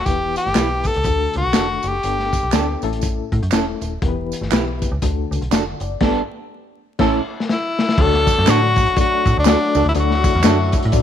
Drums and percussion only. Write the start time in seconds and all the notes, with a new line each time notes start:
0.06 kick, closed hi-hat, tambourine
0.36 closed hi-hat, tambourine
0.46 snare
0.55 snare, clap, closed hi-hat, tambourine
0.84 kick, closed hi-hat, tambourine
0.94 closed hi-hat
1.04 kick, closed hi-hat, tambourine
1.33 closed hi-hat
1.53 snare, clap, closed hi-hat, tambourine
1.83 closed hi-hat, tambourine
2.03 closed hi-hat, tambourine
2.19 snare
2.33 kick, closed hi-hat, tambourine
2.52 snare, clap, closed hi-hat, tambourine
2.82 closed hi-hat, tambourine
2.93 closed hi-hat
3.02 kick, closed hi-hat, tambourine
3.32 kick, closed hi-hat
3.43 closed hi-hat
3.52 snare, clap, closed hi-hat, tambourine
3.81 closed hi-hat, tambourine
4.02 kick, closed hi-hat
4.32 closed hi-hat, tambourine
4.42 snare
4.52 snare, clap, closed hi-hat, tambourine
4.82 kick, closed hi-hat, tambourine
5.02 kick, closed hi-hat, tambourine
5.32 closed hi-hat, tambourine
5.42 closed hi-hat
5.52 snare, clap, closed hi-hat, tambourine
5.80 closed hi-hat, tambourine
6.00 kick, snare, crash
6.99 kick, snare, crash
7.40 snare
7.49 snare
7.79 snare
7.89 snare
7.98 kick, crash
8.14 snare
8.27 kick, closed hi-hat, tambourine
8.38 snare
8.47 snare, clap, closed hi-hat, tambourine
8.76 kick, closed hi-hat, tambourine
8.86 closed hi-hat
8.96 kick, closed hi-hat, tambourine
9.26 kick, closed hi-hat, tambourine
9.45 snare, clap, closed hi-hat, tambourine
9.75 open hi-hat, tambourine
9.94 closed hi-hat, tambourine
10.11 snare
10.24 kick, closed hi-hat, tambourine
10.35 snare
10.43 snare, clap, closed hi-hat, tambourine
10.72 kick, closed hi-hat, tambourine
10.82 closed hi-hat
10.92 kick, closed hi-hat, tambourine